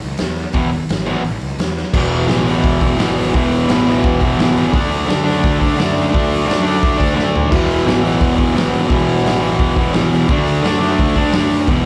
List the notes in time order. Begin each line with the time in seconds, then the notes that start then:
0.02 C#2, open hi-hat
0.17 E2, snare, open hi-hat
0.36 open hi-hat
0.53 E1 E2 B2 E3, kick, open hi-hat
0.72 open hi-hat
0.89 G#1, snare, open hi-hat
1.05 E2 B2 E3, open hi-hat
1.24 A1, open hi-hat
1.41 C#2, open hi-hat
1.59 E2, snare, open hi-hat
1.77 snare
1.93 E1 E2 B2 E3, kick, crash
2.12 open hi-hat
2.22 snare
2.28 A1 E2 B2 E3, snare, open hi-hat
2.46 B2 E3, open hi-hat
2.64 E1, kick, open hi-hat
2.81 B2 E3, kick, open hi-hat
2.97 G#1 E2 B2 E3, snare, open hi-hat
3.16 G#1, open hi-hat
3.34 E1 E2 B2 E3, kick, open hi-hat
3.52 open hi-hat
3.69 A1 E2 B2 E3, snare, open hi-hat
3.86 B2 E3, open hi-hat
4.03 E1, kick, open hi-hat
4.21 E3, kick, open hi-hat
4.25 B2
4.37 G#1 E2 B2 E3, snare, open hi-hat
4.57 G#1, open hi-hat
4.72 D2 D3 A3 D4, kick, open hi-hat
4.91 open hi-hat
5.07 F#2 D3 A3 D4, snare, open hi-hat
5.24 A3 D4, open hi-hat
5.44 D2, kick, open hi-hat
5.59 A3 D4, kick, open hi-hat
5.77 F#2 D3 A3 D4, snare, open hi-hat
5.97 F#2, open hi-hat
6.11 D2 D3 A3 D4, kick
6.16 open hi-hat
6.32 open hi-hat
6.46 F#2 D3 A3 D4, open hi-hat
6.51 snare
6.63 A3 D4, open hi-hat
6.83 D2, kick, open hi-hat
6.94 D4, snare
7.00 A3, kick, open hi-hat
7.14 F#2 D3 A3 D4
7.19 snare
7.34 D#2, floor tom
7.50 E1 E2 B2 E3, kick, open hi-hat, crash
7.71 open hi-hat
7.84 A1 E2 B2 E3, open hi-hat
7.89 snare
8.01 B2 E3, open hi-hat
8.21 E1, kick, open hi-hat
8.35 B2 E3, kick, open hi-hat
8.53 G#1 E2 B2 E3, open hi-hat
8.58 snare
8.72 G#1, open hi-hat
8.89 E1 E2 B2 E3, kick, open hi-hat
9.08 open hi-hat
9.18 snare
9.24 A1 E2 B2 E3, snare, open hi-hat
9.39 B2 E3, open hi-hat
9.59 E1, kick, open hi-hat
9.75 B2 E3, kick, open hi-hat
9.91 G#1 E2 B2 E3, snare, open hi-hat
10.11 E2, open hi-hat
10.28 D2 D3 A3 D4, kick, open hi-hat
10.47 open hi-hat
10.63 F#2 D3 A3 D4, snare, open hi-hat
10.79 A3 D4, open hi-hat
10.99 D2, kick, open hi-hat
11.16 A3 D4, kick, open hi-hat
11.32 F#2 D3 A3, snare, open hi-hat
11.36 D4
11.50 F#2, open hi-hat
11.67 E1 E2 B2 E3, kick, open hi-hat